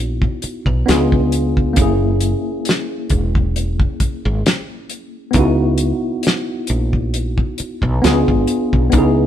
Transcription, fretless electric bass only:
0.00 0.27 A#1 medium
0.44 muted fretless electric bass stroke soft
0.66 0.83 B1 medium
0.89 1.79 C#2 loud
1.77 2.34 F#1 loud
3.11 3.84 E1 medium
4.01 muted fretless electric bass stroke soft
4.25 4.42 G#1 medium
5.35 5.91 C#2 loud
6.70 7.43 A#1 medium
7.60 muted fretless electric bass stroke soft
7.83 7.99 B1 medium
8.04 8.24 C#2 medium
8.29 8.45 G#1 medium
8.73 8.90 B1 medium
8.93 9.27 C#2 loud

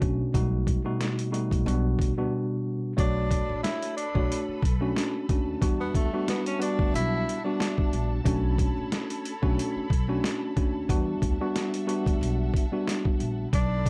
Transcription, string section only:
2.98 5.59 A4 medium
2.98 5.59 B4 medium
2.98 13.49 A5 medium
2.98 5.59 B5 medium
5.61 8.22 G3 medium
5.61 8.22 E5 medium
5.61 8.22 F#5 medium
8.26 10.87 A4 medium
8.26 10.87 C#5 medium
8.26 10.87 B5 medium
10.89 13.50 G3 medium
10.89 13.50 E5 medium
10.89 13.50 F#5 medium
13.53 13.89 A4 medium
13.53 13.89 D5 medium
13.53 13.89 A5 medium
13.53 13.89 B5 medium

